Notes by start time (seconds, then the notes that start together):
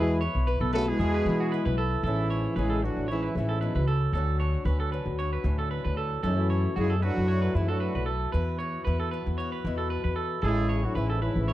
Already playing: E2 E3 E4 B4
0.00 B2 G#3 G#4
0.21 B4 C#5
0.35 B1
0.47 B4
0.60 B1 A4
0.73 C#3 A3 E4 F#4 A4 B4
0.88 B2 G#3 E4 G#4
0.99 E2 E4 G#4
1.14 B4
1.25 B2 E3
1.40 F#4
1.52 E4 B4
1.65 B1 B4
1.78 A4
2.03 A1 G#2 E3 C#4 E4 A4
2.07 C#4
2.30 C#4 C#5
2.56 A1 C#3 G#3 C#4 E4 G#4 B4
2.70 A4
2.82 A2 E3 F#3 D4 F#4, muted clean electric guitar stroke
2.97 A1
3.08 G#2 E3 C#4 E4 C#5
3.23 B4
3.33 A1 G#2 E3 C#4 E4
3.38 E3 C#4
3.49 A4
3.61 B2 B4
3.75 C#2 B4
3.88 C#3 A4
4.13 D2 D3 F#3 C#4 A4
4.17 F#4, muted steel-string acoustic guitar stroke
4.40 D4 C#5
4.65 D2 C#4 B4
4.80 A4
4.92 F#3 B4
5.06 D2
5.19 D4 C#5
5.33 B4
5.44 D2 A2 C#4
5.59 A4
5.71 B4
5.84 D2 B4
5.97 A4
6.23 F#2 A2 E3 F#3 A3 C#4 E4 A4
6.50 A3 C#5
6.76 F#2 C#3 G#3 A3 E4 F#4 G#4
6.90 A4
6.96 B2 G#3 G#4
7.02 F#3 D4 F#4 B4
7.06 A2
7.17 F#2
7.28 E4 C#5
7.42 B4
7.55 F#2 G#2 E3 A3 C#4 E4
7.68 A2 F#3 D4 F#4 A4
7.80 B4
7.95 B1 B4
8.06 A4
8.32 E2 E3 F#4 B4
8.59 F#4 C#5
8.85 E2 E4 B4
9.00 A4
9.11 B3 B4
9.26 E2
9.38 F#4 C#5
9.52 B4
9.65 E2 B2 E4
9.78 A4
9.90 B4
10.04 E2 B4
10.16 A4
10.42 A1 C#3 G#3 E4 G#4 A4
10.69 E4 C#5
10.84 A2 F#3 D4 F#4
10.95 A1 E3 C#4 E4 B4
11.00 G#2
11.10 A4
11.21 E3 C#4 E4 B4
11.26 G#2
11.36 A1
11.48 C#4 C#5